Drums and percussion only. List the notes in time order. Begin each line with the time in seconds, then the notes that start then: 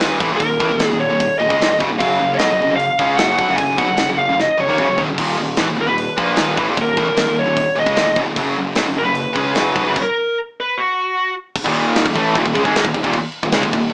0.00 snare, open hi-hat
0.20 kick
0.40 kick, open hi-hat
0.60 kick
0.80 snare, open hi-hat
1.20 kick, open hi-hat
1.50 kick
1.62 snare, open hi-hat
1.80 kick
2.00 kick, open hi-hat
2.39 snare, open hi-hat
2.80 open hi-hat
2.99 kick
3.18 snare, open hi-hat
3.39 kick
3.58 kick, open hi-hat
3.78 kick
3.97 snare, open hi-hat
4.40 snare
4.78 mid tom
4.98 floor tom
5.18 kick, open hi-hat, crash
5.57 snare, open hi-hat
5.98 open hi-hat
6.18 kick
6.37 snare, open hi-hat
6.57 kick
6.77 kick, open hi-hat
6.97 kick
7.17 snare, open hi-hat
7.57 kick, open hi-hat
7.86 kick
7.97 snare, open hi-hat
8.16 kick
8.36 kick, open hi-hat
8.75 snare, open hi-hat
9.15 open hi-hat
9.36 kick
9.55 snare, open hi-hat
9.76 kick
9.96 kick, crash
11.56 kick, crash
11.66 kick
11.76 crash
11.96 snare, crash
12.06 kick
12.15 kick, crash
12.35 kick, crash
12.46 kick
12.55 kick, crash
12.65 kick
12.76 snare, crash
12.85 kick
12.94 kick, crash
13.04 kick
13.13 kick, crash
13.32 crash
13.43 kick
13.52 snare, crash
13.63 kick
13.73 kick, crash